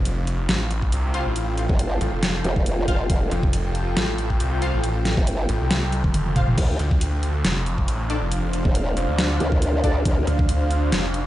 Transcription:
Already playing: F1 D4 F4 A4 C5 F5 G5
0.05 closed hi-hat
0.27 closed hi-hat
0.49 A1, snare, closed hi-hat
0.71 closed hi-hat
0.82 kick
0.92 C2, closed hi-hat
1.14 F4 C5 F5, closed hi-hat
1.26 A1
1.36 closed hi-hat
1.58 closed hi-hat
1.69 G1, kick
1.79 closed hi-hat
2.01 A1, closed hi-hat
2.13 F1
2.23 snare, closed hi-hat
2.44 F1, closed hi-hat
2.56 kick
2.66 closed hi-hat
2.88 F1 F4 C5 F5, kick, closed hi-hat
3.10 F1, kick, closed hi-hat
3.31 F1, closed hi-hat
3.43 kick
3.53 closed hi-hat
3.75 closed hi-hat
3.97 A1, snare, closed hi-hat
4.18 closed hi-hat
4.30 kick
4.40 C2, closed hi-hat
4.62 F4 C5 F5, closed hi-hat
4.74 A1
4.84 closed hi-hat
5.05 snare, closed hi-hat
5.17 G1, kick
5.27 closed hi-hat
5.49 A1, closed hi-hat
5.61 C2
5.71 snare, closed hi-hat, high tom
5.82 high tom
5.92 closed hi-hat
6.04 F1, kick, mid tom
6.14 closed hi-hat, mid tom
6.26 mid tom
6.36 F4 C5 F5, kick, closed hi-hat, mid tom
6.48 mid tom
6.58 D2 D4, kick, closed hi-hat, crash
6.77 D2 C5, closed hi-hat
6.90 F5, kick
7.01 closed hi-hat
7.23 closed hi-hat
7.45 F1, snare, closed hi-hat
7.66 closed hi-hat
7.78 kick
7.88 A1, closed hi-hat
8.10 D4 A4 D5, closed hi-hat
8.22 F1
8.32 closed hi-hat
8.53 closed hi-hat
8.65 E1, kick
8.75 closed hi-hat
8.97 F1, closed hi-hat
9.09 D2
9.19 snare, closed hi-hat
9.40 D2, closed hi-hat
9.52 kick
9.62 closed hi-hat
9.84 D2 D4 A4 D5, kick, closed hi-hat
10.05 D2, kick, closed hi-hat
10.27 D2, closed hi-hat
10.39 kick
10.49 closed hi-hat
10.71 closed hi-hat
10.92 F1, snare, closed hi-hat
11.14 closed hi-hat

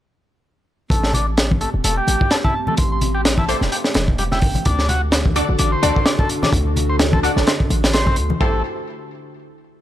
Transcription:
0.90 A1 A3 C4 G4, kick, closed hi-hat
1.03 snare
1.14 D4, closed hi-hat, low conga
1.37 snare, closed hi-hat
1.51 kick, high conga
1.61 A3, closed hi-hat
1.74 E1
1.84 E1 A3, closed hi-hat
1.98 G4
2.07 A1, closed hi-hat, high conga
2.21 kick
2.31 A4, snare, closed hi-hat
2.44 E4 A5, kick, low conga
2.55 A5
2.67 A3, high conga, low conga
2.77 A1 C6, kick, closed hi-hat
2.92 C6
3.01 closed hi-hat, low conga
3.15 G4
3.25 snare, closed hi-hat
3.38 E4 A5, kick, high conga
3.48 D4 E4 G4 A4 C5, closed hi-hat
3.61 E1, snare
3.72 G4, closed hi-hat
3.84 snare
3.94 E1, snare, closed hi-hat, high conga
4.08 kick
4.18 G3, closed hi-hat
4.31 E4 G5, snare, low conga
4.41 A1, kick, open hi-hat
4.55 closed hi-hat, high conga, low conga
4.65 D2 D3 D4 F#4 A4, kick, closed hi-hat
4.79 snare
4.89 F#4, closed hi-hat, low conga
5.12 snare, closed hi-hat
5.25 kick, high conga
5.36 D4 F#4 A4 D5, closed hi-hat
5.49 A1
5.59 A1 D4, closed hi-hat
5.72 C5
5.83 D2 D4 F#4 A4 D5, closed hi-hat, high conga
5.96 kick
6.06 D5, snare, closed hi-hat
6.19 A4, kick, low conga
6.29 closed hi-hat
6.43 D4, snare, high conga, low conga
6.53 D2, kick, closed hi-hat
6.76 closed hi-hat, low conga
6.90 C5
6.99 snare, closed hi-hat
7.12 A4, kick, high conga
7.23 D4 F#4 A4 D5, closed hi-hat
7.36 A1, snare
7.47 C5, snare, closed hi-hat
7.60 kick
7.69 A1, closed hi-hat, high conga
7.84 snare, closed hi-hat
7.93 C5, snare, closed hi-hat
8.06 C4, kick, low conga
8.16 D2, closed hi-hat
8.30 high conga, low conga
8.40 A1 A3 E4 G4 A4 C5, kick

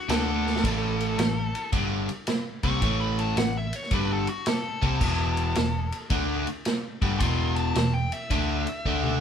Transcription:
0.08 D2 D3 A3 D4 A4, snare, ride
0.47 snare
0.56 snare
0.63 A1 A2 E3 A3, kick, crash, ride
1.00 ride
1.18 A1 A2 E3, snare, ride
1.55 ride
1.72 G1 G2 D3 G3, kick, ride
2.09 ride
2.27 snare, ride
2.63 C2 C3 G3 C4 C#6, kick, snare, ride
2.82 A1 A2 E3 A3, kick, ride
3.01 B5
3.18 A5, ride
3.37 A1 A2 E3 F#5, snare, ride
3.57 E5
3.73 C#5, ride
3.83 snare
3.91 G1 G2 D3 G3 B4, kick, ride
4.13 A4
4.27 F#4, ride
4.46 A4, snare, ride
4.82 C2 C3 G3 C4, kick, ride
5.01 E1 E2 B2 E3, kick, crash
5.37 ride
5.55 E1 E2 B2, snare, ride
5.92 ride
6.10 D2 D3 A3 D4, kick, ride
6.47 ride
6.65 snare, ride
7.02 G1 G2 D3 G3, kick, ride
7.20 E1 E2 B2 E3 C6, kick, ride
7.56 A5, ride
7.75 E1 E2 B2, snare, ride
7.94 G5
8.12 E5, ride
8.30 D2 D3 A3 D4, kick, ride
8.67 ride
8.85 D2 D3 A3 D4, kick
9.03 mid tom

